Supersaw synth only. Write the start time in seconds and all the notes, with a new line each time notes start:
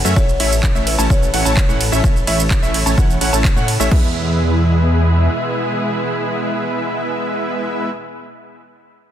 0.05 A3 C#4 F#4 C#5 E5
0.16 A3 C#4 E4 C#5 E5
0.40 A3 C#4 E4 C#5 E5
0.75 A3 C#4 E4 C#5 E5
0.98 A3 C#4 E4 C#5 A5
1.10 A3 E4 F#5
1.34 A3 C#4 E4 C#5 F#5
1.45 A3 C#4 E4 C#5 A5
1.69 A3 C#4 E4 C#5 F#5
1.92 A3 C#4 E4 C#5 E5
2.04 A3 E4 C#5 E5
2.27 A3 C#4 E4 C#5 E5
2.63 A3 C#4 E4 C#5 E5
2.86 A3 C#4 E4 C#5 A5
2.98 C#4 E4 C#5 F#5
3.21 A3 C#4 E4 C#5 F#5
3.33 A3 C#4 E4 C#5 A5
3.56 A3 C#4 E4 C#5 F#5
3.80 A3 C#4 E4 C#5 E5
3.92 G#3 B3 E4 B4